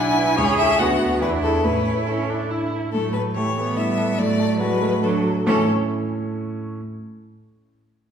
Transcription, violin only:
0.00 0.40 G#5 loud
0.38 0.58 C#5 loud
0.58 0.81 E5 loud
0.79 1.21 F#5 loud
1.21 1.29 B4 loud
1.43 1.66 A4 loud
1.64 2.08 B4 loud
2.07 2.51 A4 medium
2.93 3.12 A4 loud
3.13 3.21 B4 loud
3.35 3.78 C#5 medium
3.77 4.20 E5 loud
4.18 4.59 D5 loud
4.59 5.05 B4 loud
5.03 5.46 A4 medium
5.47 5.71 A4 loud

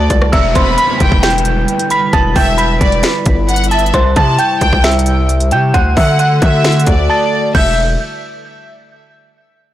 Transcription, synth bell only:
0.32 0.54 E5 medium
0.32 0.54 E6 loud
0.55 0.77 C5 medium
0.55 0.76 C6 medium
0.78 1.20 B5 medium
0.78 1.21 B6 medium
1.23 1.87 G5 medium
1.23 1.87 G6 medium
1.91 2.12 B5 medium
1.91 2.12 B6 medium
2.13 2.34 A5 loud
2.13 2.35 A6 medium
2.36 2.57 G5 medium
2.36 2.57 G6 medium
2.58 3.67 B5 medium
2.58 3.67 B6 medium
3.71 3.92 A5 medium
3.71 3.93 A6 medium
3.94 4.15 C5 medium
3.94 4.15 C6 loud
4.16 4.37 A5 medium
4.16 4.38 A6 medium
4.39 4.81 G5 medium
4.39 4.82 G6 medium
4.84 5.48 E5 medium
4.84 5.48 E6 medium
5.52 5.73 G5 medium
5.52 5.73 G6 medium
5.74 5.95 F#5 loud
5.74 5.95 F#6 medium
5.97 6.18 E5 medium
5.97 6.18 E6 medium
6.19 7.05 F#5 medium
6.19 7.06 F#6 medium
7.10 7.31 A5 medium
7.10 7.31 A6 medium
7.55 7.76 G6 medium

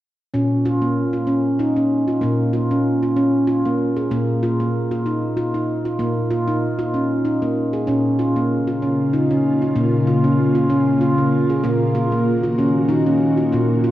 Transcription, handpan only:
0.33 2.19 A#2 medium
0.33 0.65 C#4 medium
0.65 0.83 F4 medium
0.82 1.14 A#3 medium
1.13 1.28 F4 medium
1.27 1.59 C#4 medium
1.59 1.77 D#4 medium
1.76 2.08 C#4 medium
2.08 2.22 F4 medium
2.21 4.08 A#2 medium
2.21 2.54 A#3 medium
2.53 2.71 F4 medium
2.71 3.03 C#4 medium
3.03 3.17 F4 medium
3.17 3.48 C#4 medium
3.47 3.65 F4 medium
3.65 3.97 A#3 medium
3.97 4.11 G#4 medium
4.11 5.96 A#2 medium
4.11 4.43 A#3 medium
4.43 4.60 F4 medium
4.60 4.91 A#3 medium
4.91 5.06 F4 medium
5.06 5.37 D#4 medium
5.37 5.54 F4 medium
5.54 5.86 D#4 medium
5.85 6.00 F4 medium
5.99 7.84 A#2 medium
5.99 6.31 A#3 medium
6.31 6.48 F4 medium
6.48 6.79 D#4 medium
6.79 6.94 F4 medium
6.94 7.25 C#4 medium
7.25 7.42 D#4 medium
7.42 7.74 A#3 medium
7.73 7.88 G#4 medium
7.87 9.73 A#2 medium
7.87 8.19 C#4 medium
8.19 8.36 F4 medium
8.36 8.68 A#3 medium
8.67 8.82 F4 medium
8.82 9.14 C#4 medium
9.13 9.31 D#4 medium
9.31 9.62 C#4 medium
9.62 9.76 F4 medium
9.76 11.60 A#2 medium
9.76 10.08 A#3 medium
10.07 10.25 F4 medium
10.24 10.56 C#4 medium
10.55 10.70 F4 medium
10.70 11.02 C#4 medium
11.01 11.18 F4 medium
11.18 11.50 A#3 medium
11.50 11.64 G#4 medium
11.64 13.49 A#2 medium
11.64 11.96 A#3 medium
11.95 12.12 F4 medium
12.12 12.44 A#3 medium
12.44 12.58 F4 medium
12.59 12.90 C#4 medium
12.89 13.06 D#4 medium
13.07 13.38 C#4 medium
13.38 13.52 F4 medium
13.53 13.91 A#2 medium
13.53 13.84 A#3 medium
13.84 13.91 F4 medium

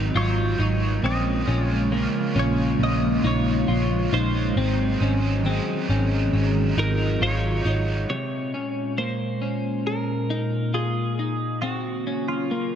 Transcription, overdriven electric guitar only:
0.00 0.15 F#3 soft
0.00 0.16 C4 medium
0.00 0.15 D#4 medium
0.14 0.59 D#3 medium
0.14 0.60 F#3 medium
0.20 0.58 D#4 medium
0.59 1.04 D#4 medium
0.65 1.04 F#3 soft
1.02 1.47 A#2 medium
1.02 1.48 F3 medium
1.02 1.48 G#3 medium
1.02 1.48 C#4 medium
1.06 1.45 F4 medium
1.46 1.93 C#4 soft
1.46 1.91 F4 medium
1.52 1.91 G#3 soft
1.90 2.35 F3 medium
1.90 2.36 G#3 medium
1.90 2.37 C#4 medium
1.95 2.34 F4 medium
2.35 2.81 C#4 medium
2.35 2.80 F4 medium
2.41 2.80 G#3 soft
2.79 3.24 A#2 medium
2.79 3.24 F3 medium
2.79 3.25 G#3 medium
2.79 3.25 C#4 medium
2.83 3.21 F4 loud
3.22 3.68 C#4 medium
3.22 3.67 F4 medium
3.28 3.67 G#3 soft
3.66 4.11 F3 medium
3.66 4.12 G#3 medium
3.66 4.12 C#4 medium
3.72 4.09 F4 medium
4.10 4.57 C#4 medium
4.10 4.55 F4 medium
4.16 4.58 G#3 soft
4.56 5.01 G#2 medium
4.56 5.01 D#3 medium
4.56 5.02 F#3 medium
4.56 5.02 C4 medium
4.56 4.99 D#4 medium
5.00 5.46 C4 soft
5.00 5.44 D#4 medium
5.05 5.45 F#3 soft
5.43 5.88 D#3 medium
5.43 5.89 F#3 medium
5.43 5.90 C4 medium
5.49 5.88 D#4 medium
5.89 6.34 C4 medium
5.89 6.33 D#4 medium
5.95 6.34 F#3 soft
6.33 6.77 G#2 loud
6.33 6.78 D#3 medium
6.33 6.78 F#3 loud
6.33 6.78 C4 loud
6.37 6.75 D#4 loud
6.76 7.22 C4 medium
6.76 7.21 D#4 medium
6.82 7.21 F#3 soft
7.19 7.64 D#3 medium
7.19 7.66 F#3 medium
7.26 7.63 D#4 medium
7.64 8.09 D#4 medium
7.70 8.12 F#3 soft

